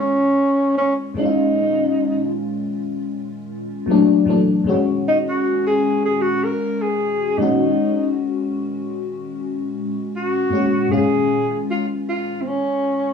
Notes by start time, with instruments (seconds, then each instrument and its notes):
Already playing: fm electric piano A#2 D#3 G#3 C#4 F4
0.00 tenor saxophone C#4
0.78 tenor saxophone C#4
1.14 fm electric piano A#2 D#3 G#3 C#4, tenor saxophone D#4
1.19 fm electric piano E4
1.25 fm electric piano F4
3.86 fm electric piano A#2 E3 F#3
3.90 fm electric piano A3 D4
4.25 fm electric piano A#2 E3 F#3 A3
4.30 fm electric piano D4
4.64 fm electric piano A#2 C#3 G#3
4.68 fm electric piano C#4 F#4
4.72 fm electric piano D#3
5.08 tenor saxophone D#4
5.29 tenor saxophone F#4
5.66 tenor saxophone G#4
6.05 tenor saxophone G#4
6.21 tenor saxophone F#4
6.44 tenor saxophone A#4
6.82 tenor saxophone G#4
7.38 fm electric piano A#2 D#3 G#3 C#4, tenor saxophone D#4
7.42 fm electric piano F#4
10.16 tenor saxophone F#4
10.50 fm electric piano A#2 D#3 G#3 C#4
10.55 fm electric piano F#4
10.88 fm electric piano G#2 D#3 G#3 C#4, tenor saxophone G#4
10.93 fm electric piano A#2 F4
11.70 tenor saxophone F4
12.09 tenor saxophone F4
12.42 tenor saxophone C4
12.48 tenor saxophone C#4